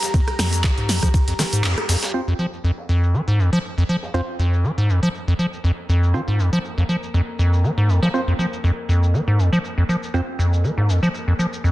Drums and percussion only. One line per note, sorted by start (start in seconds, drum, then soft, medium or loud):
0.03 snare medium
0.03 closed hi-hat medium
0.03 shaker soft
0.14 kick loud
0.14 ride medium
0.14 shaker soft
0.28 cross-stick medium
0.28 closed hi-hat soft
0.28 ride soft
0.39 cross-stick medium
0.39 snare medium
0.39 open hi-hat loud
0.39 ride medium
0.39 shaker medium
0.53 closed hi-hat medium
0.53 ride soft
0.53 shaker soft
0.64 kick loud
0.64 cross-stick medium
0.64 snare loud
0.64 clap loud
0.64 ride medium
0.64 shaker soft
0.78 closed hi-hat soft
0.89 snare medium
0.89 open hi-hat loud
0.89 ride medium
0.89 shaker medium
1.03 kick medium
1.03 cross-stick medium
1.03 closed hi-hat medium
1.03 shaker soft
1.14 kick loud
1.14 ride medium
1.14 shaker soft
1.28 closed hi-hat medium
1.28 ride soft
1.39 cross-stick medium
1.39 snare soft
1.39 snare loud
1.39 open hi-hat loud
1.39 ride medium
1.39 shaker medium
1.53 closed hi-hat medium
1.53 shaker soft
1.64 snare loud
1.64 clap loud
1.64 ride medium
1.64 shaker soft
1.78 cross-stick medium
1.78 closed hi-hat medium
1.89 snare loud
1.89 open hi-hat loud
1.89 ride medium
1.89 shaker medium
2.03 snare loud
2.03 closed hi-hat medium
2.03 ride medium
2.03 shaker soft
2.14 ride medium
2.14 shaker soft
2.39 ride medium
2.39 shaker medium
2.53 shaker soft
2.64 ride medium
2.64 shaker soft
2.78 snare soft
2.89 ride medium
2.89 shaker medium
3.03 shaker soft
3.14 ride medium
3.14 shaker soft
3.39 ride medium
3.39 shaker medium
3.53 shaker soft
3.64 ride medium
3.64 shaker soft
3.89 ride medium
3.89 shaker medium
4.03 snare soft
4.03 shaker soft
4.14 ride medium
4.14 shaker soft
4.28 ride soft
4.39 ride medium
4.39 shaker medium
4.53 ride soft
4.53 shaker soft
4.64 ride medium
4.64 shaker soft
4.89 ride medium
4.89 shaker medium
5.03 shaker soft
5.14 ride medium
5.14 shaker soft
5.28 ride soft
5.39 ride medium
5.39 shaker medium
5.53 shaker soft
5.64 ride medium
5.64 shaker soft
5.89 ride medium
5.89 shaker medium
6.03 shaker soft
6.14 ride medium
6.14 shaker soft
6.39 ride medium
6.39 shaker medium
6.53 shaker soft
6.64 ride medium
6.64 shaker soft
6.78 snare soft
6.89 ride medium
6.89 shaker medium
7.03 shaker soft
7.14 ride medium
7.14 shaker soft
7.39 ride medium
7.39 shaker medium
7.53 shaker soft
7.64 ride medium
7.64 shaker soft
7.89 ride medium
7.89 shaker medium
8.03 snare soft
8.03 shaker soft
8.14 ride medium
8.14 shaker soft
8.28 ride soft
8.39 ride medium
8.39 shaker medium
8.53 ride soft
8.53 shaker soft
8.64 ride medium
8.64 shaker soft
8.89 ride medium
8.89 shaker medium
9.03 shaker soft
9.14 ride medium
9.14 shaker soft
9.28 ride soft
9.39 ride medium
9.39 shaker medium
9.53 shaker soft
9.64 ride medium
9.64 shaker soft
9.89 ride medium
9.89 shaker medium
10.03 shaker soft
10.14 ride medium
10.14 shaker soft
10.39 ride medium
10.39 shaker medium
10.53 shaker soft
10.64 ride medium
10.64 shaker soft
10.78 snare soft
10.89 ride medium
10.89 shaker medium
11.03 shaker soft
11.14 ride medium
11.14 shaker soft
11.39 ride medium
11.39 shaker medium
11.53 shaker soft
11.64 ride medium
11.64 shaker soft